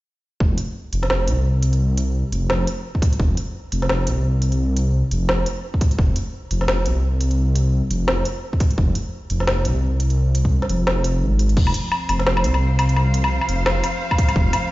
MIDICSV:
0, 0, Header, 1, 4, 480
1, 0, Start_track
1, 0, Tempo, 348837
1, 560, Time_signature, 4, 2, 24, 8
1, 20246, End_track
2, 0, Start_track
2, 0, Title_t, "Cello section"
2, 0, Program_c, 0, 48
2, 15925, Note_on_c, 0, 53, 70
2, 16174, Note_on_c, 0, 60, 68
2, 16507, Note_on_c, 0, 72, 72
2, 17377, Note_on_c, 0, 77, 70
2, 20246, Note_off_c, 0, 53, 0
2, 20246, Note_off_c, 0, 60, 0
2, 20246, Note_off_c, 0, 72, 0
2, 20246, Note_off_c, 0, 77, 0
2, 20246, End_track
3, 0, Start_track
3, 0, Title_t, "Detuned saw bass"
3, 0, Program_c, 1, 39
3, 556, Note_on_c, 1, 29, 97
3, 782, Note_off_c, 1, 29, 0
3, 1278, Note_on_c, 1, 29, 82
3, 1758, Note_on_c, 1, 36, 85
3, 1778, Note_off_c, 1, 29, 0
3, 3081, Note_off_c, 1, 36, 0
3, 3198, Note_on_c, 1, 29, 82
3, 3666, Note_off_c, 1, 29, 0
3, 4397, Note_on_c, 1, 29, 96
3, 4623, Note_off_c, 1, 29, 0
3, 5124, Note_on_c, 1, 29, 82
3, 5605, Note_on_c, 1, 36, 86
3, 5626, Note_off_c, 1, 29, 0
3, 6925, Note_off_c, 1, 36, 0
3, 7042, Note_on_c, 1, 29, 80
3, 7508, Note_off_c, 1, 29, 0
3, 8236, Note_on_c, 1, 29, 98
3, 8462, Note_off_c, 1, 29, 0
3, 8956, Note_on_c, 1, 29, 80
3, 9438, Note_on_c, 1, 36, 88
3, 9458, Note_off_c, 1, 29, 0
3, 10761, Note_off_c, 1, 36, 0
3, 10878, Note_on_c, 1, 29, 81
3, 11346, Note_off_c, 1, 29, 0
3, 12080, Note_on_c, 1, 29, 99
3, 12304, Note_off_c, 1, 29, 0
3, 12801, Note_on_c, 1, 29, 81
3, 13277, Note_on_c, 1, 36, 88
3, 13298, Note_off_c, 1, 29, 0
3, 14601, Note_off_c, 1, 36, 0
3, 14716, Note_on_c, 1, 29, 84
3, 15436, Note_on_c, 1, 32, 100
3, 15457, Note_off_c, 1, 29, 0
3, 15905, Note_off_c, 1, 32, 0
3, 15916, Note_on_c, 1, 29, 96
3, 16142, Note_off_c, 1, 29, 0
3, 16638, Note_on_c, 1, 29, 83
3, 17120, Note_on_c, 1, 36, 91
3, 17140, Note_off_c, 1, 29, 0
3, 18442, Note_off_c, 1, 36, 0
3, 18557, Note_on_c, 1, 29, 83
3, 19026, Note_off_c, 1, 29, 0
3, 19758, Note_on_c, 1, 29, 100
3, 19983, Note_off_c, 1, 29, 0
3, 20246, End_track
4, 0, Start_track
4, 0, Title_t, "Drums"
4, 556, Note_on_c, 9, 36, 108
4, 693, Note_off_c, 9, 36, 0
4, 794, Note_on_c, 9, 42, 74
4, 931, Note_off_c, 9, 42, 0
4, 1275, Note_on_c, 9, 42, 63
4, 1412, Note_off_c, 9, 42, 0
4, 1414, Note_on_c, 9, 38, 33
4, 1513, Note_off_c, 9, 38, 0
4, 1513, Note_on_c, 9, 38, 114
4, 1651, Note_off_c, 9, 38, 0
4, 1755, Note_on_c, 9, 42, 73
4, 1892, Note_off_c, 9, 42, 0
4, 2236, Note_on_c, 9, 42, 63
4, 2373, Note_off_c, 9, 42, 0
4, 2379, Note_on_c, 9, 42, 36
4, 2516, Note_off_c, 9, 42, 0
4, 2717, Note_on_c, 9, 42, 76
4, 2855, Note_off_c, 9, 42, 0
4, 3199, Note_on_c, 9, 42, 65
4, 3336, Note_off_c, 9, 42, 0
4, 3437, Note_on_c, 9, 38, 113
4, 3574, Note_off_c, 9, 38, 0
4, 3679, Note_on_c, 9, 42, 76
4, 3817, Note_off_c, 9, 42, 0
4, 4058, Note_on_c, 9, 36, 58
4, 4157, Note_off_c, 9, 36, 0
4, 4157, Note_on_c, 9, 36, 104
4, 4161, Note_on_c, 9, 42, 66
4, 4295, Note_off_c, 9, 36, 0
4, 4298, Note_off_c, 9, 42, 0
4, 4301, Note_on_c, 9, 42, 36
4, 4397, Note_on_c, 9, 36, 112
4, 4439, Note_off_c, 9, 42, 0
4, 4535, Note_off_c, 9, 36, 0
4, 4641, Note_on_c, 9, 42, 75
4, 4779, Note_off_c, 9, 42, 0
4, 5120, Note_on_c, 9, 42, 62
4, 5257, Note_off_c, 9, 42, 0
4, 5261, Note_on_c, 9, 38, 35
4, 5359, Note_off_c, 9, 38, 0
4, 5359, Note_on_c, 9, 38, 119
4, 5497, Note_off_c, 9, 38, 0
4, 5598, Note_on_c, 9, 42, 75
4, 5735, Note_off_c, 9, 42, 0
4, 6079, Note_on_c, 9, 42, 64
4, 6217, Note_off_c, 9, 42, 0
4, 6220, Note_on_c, 9, 42, 34
4, 6357, Note_off_c, 9, 42, 0
4, 6557, Note_on_c, 9, 42, 69
4, 6695, Note_off_c, 9, 42, 0
4, 7037, Note_on_c, 9, 42, 62
4, 7174, Note_off_c, 9, 42, 0
4, 7277, Note_on_c, 9, 38, 116
4, 7414, Note_off_c, 9, 38, 0
4, 7517, Note_on_c, 9, 42, 72
4, 7654, Note_off_c, 9, 42, 0
4, 7897, Note_on_c, 9, 36, 59
4, 7995, Note_on_c, 9, 42, 60
4, 7997, Note_off_c, 9, 36, 0
4, 7997, Note_on_c, 9, 36, 103
4, 8133, Note_off_c, 9, 42, 0
4, 8134, Note_off_c, 9, 36, 0
4, 8135, Note_on_c, 9, 42, 33
4, 8236, Note_on_c, 9, 36, 112
4, 8272, Note_off_c, 9, 42, 0
4, 8374, Note_off_c, 9, 36, 0
4, 8474, Note_on_c, 9, 42, 70
4, 8612, Note_off_c, 9, 42, 0
4, 8956, Note_on_c, 9, 42, 58
4, 9093, Note_off_c, 9, 42, 0
4, 9096, Note_on_c, 9, 38, 33
4, 9195, Note_off_c, 9, 38, 0
4, 9195, Note_on_c, 9, 38, 113
4, 9332, Note_off_c, 9, 38, 0
4, 9435, Note_on_c, 9, 42, 70
4, 9572, Note_off_c, 9, 42, 0
4, 9916, Note_on_c, 9, 42, 59
4, 10053, Note_off_c, 9, 42, 0
4, 10057, Note_on_c, 9, 42, 32
4, 10194, Note_off_c, 9, 42, 0
4, 10396, Note_on_c, 9, 42, 71
4, 10533, Note_off_c, 9, 42, 0
4, 10878, Note_on_c, 9, 42, 60
4, 11016, Note_off_c, 9, 42, 0
4, 11115, Note_on_c, 9, 38, 110
4, 11253, Note_off_c, 9, 38, 0
4, 11358, Note_on_c, 9, 42, 69
4, 11495, Note_off_c, 9, 42, 0
4, 11738, Note_on_c, 9, 36, 56
4, 11837, Note_on_c, 9, 42, 60
4, 11839, Note_off_c, 9, 36, 0
4, 11839, Note_on_c, 9, 36, 99
4, 11975, Note_off_c, 9, 42, 0
4, 11976, Note_off_c, 9, 36, 0
4, 11979, Note_on_c, 9, 42, 33
4, 12079, Note_on_c, 9, 36, 105
4, 12116, Note_off_c, 9, 42, 0
4, 12217, Note_off_c, 9, 36, 0
4, 12318, Note_on_c, 9, 42, 72
4, 12456, Note_off_c, 9, 42, 0
4, 12796, Note_on_c, 9, 42, 60
4, 12934, Note_off_c, 9, 42, 0
4, 12939, Note_on_c, 9, 38, 32
4, 13037, Note_off_c, 9, 38, 0
4, 13037, Note_on_c, 9, 38, 107
4, 13175, Note_off_c, 9, 38, 0
4, 13278, Note_on_c, 9, 42, 73
4, 13416, Note_off_c, 9, 42, 0
4, 13759, Note_on_c, 9, 42, 63
4, 13897, Note_off_c, 9, 42, 0
4, 13899, Note_on_c, 9, 42, 34
4, 14037, Note_off_c, 9, 42, 0
4, 14239, Note_on_c, 9, 42, 73
4, 14376, Note_off_c, 9, 42, 0
4, 14378, Note_on_c, 9, 36, 56
4, 14516, Note_off_c, 9, 36, 0
4, 14617, Note_on_c, 9, 38, 33
4, 14716, Note_on_c, 9, 42, 63
4, 14754, Note_off_c, 9, 38, 0
4, 14854, Note_off_c, 9, 42, 0
4, 14957, Note_on_c, 9, 38, 111
4, 15094, Note_off_c, 9, 38, 0
4, 15195, Note_on_c, 9, 42, 72
4, 15333, Note_off_c, 9, 42, 0
4, 15677, Note_on_c, 9, 42, 63
4, 15815, Note_off_c, 9, 42, 0
4, 15815, Note_on_c, 9, 42, 35
4, 15917, Note_on_c, 9, 49, 72
4, 15918, Note_on_c, 9, 36, 111
4, 15953, Note_off_c, 9, 42, 0
4, 16055, Note_off_c, 9, 36, 0
4, 16055, Note_off_c, 9, 49, 0
4, 16056, Note_on_c, 9, 77, 52
4, 16157, Note_on_c, 9, 42, 79
4, 16194, Note_off_c, 9, 77, 0
4, 16294, Note_off_c, 9, 42, 0
4, 16397, Note_on_c, 9, 77, 75
4, 16534, Note_off_c, 9, 77, 0
4, 16638, Note_on_c, 9, 42, 64
4, 16638, Note_on_c, 9, 77, 51
4, 16775, Note_off_c, 9, 42, 0
4, 16775, Note_off_c, 9, 77, 0
4, 16780, Note_on_c, 9, 38, 35
4, 16878, Note_off_c, 9, 38, 0
4, 16878, Note_on_c, 9, 38, 114
4, 17015, Note_off_c, 9, 38, 0
4, 17020, Note_on_c, 9, 77, 77
4, 17119, Note_on_c, 9, 42, 77
4, 17158, Note_off_c, 9, 77, 0
4, 17257, Note_off_c, 9, 42, 0
4, 17258, Note_on_c, 9, 77, 51
4, 17395, Note_off_c, 9, 77, 0
4, 17597, Note_on_c, 9, 42, 66
4, 17597, Note_on_c, 9, 77, 81
4, 17735, Note_off_c, 9, 42, 0
4, 17735, Note_off_c, 9, 77, 0
4, 17738, Note_on_c, 9, 42, 36
4, 17839, Note_on_c, 9, 77, 51
4, 17876, Note_off_c, 9, 42, 0
4, 17977, Note_off_c, 9, 77, 0
4, 18080, Note_on_c, 9, 42, 78
4, 18218, Note_off_c, 9, 42, 0
4, 18219, Note_on_c, 9, 77, 73
4, 18356, Note_off_c, 9, 77, 0
4, 18458, Note_on_c, 9, 77, 50
4, 18558, Note_on_c, 9, 42, 66
4, 18596, Note_off_c, 9, 77, 0
4, 18696, Note_off_c, 9, 42, 0
4, 18796, Note_on_c, 9, 38, 121
4, 18796, Note_on_c, 9, 77, 76
4, 18934, Note_off_c, 9, 38, 0
4, 18934, Note_off_c, 9, 77, 0
4, 19038, Note_on_c, 9, 42, 77
4, 19038, Note_on_c, 9, 77, 51
4, 19175, Note_off_c, 9, 42, 0
4, 19175, Note_off_c, 9, 77, 0
4, 19417, Note_on_c, 9, 36, 61
4, 19417, Note_on_c, 9, 77, 74
4, 19517, Note_off_c, 9, 36, 0
4, 19517, Note_on_c, 9, 36, 108
4, 19517, Note_on_c, 9, 42, 66
4, 19554, Note_off_c, 9, 77, 0
4, 19655, Note_off_c, 9, 36, 0
4, 19655, Note_off_c, 9, 42, 0
4, 19657, Note_on_c, 9, 42, 36
4, 19657, Note_on_c, 9, 77, 51
4, 19757, Note_on_c, 9, 36, 117
4, 19795, Note_off_c, 9, 42, 0
4, 19795, Note_off_c, 9, 77, 0
4, 19894, Note_off_c, 9, 36, 0
4, 19995, Note_on_c, 9, 42, 78
4, 19995, Note_on_c, 9, 77, 74
4, 20133, Note_off_c, 9, 42, 0
4, 20133, Note_off_c, 9, 77, 0
4, 20246, End_track
0, 0, End_of_file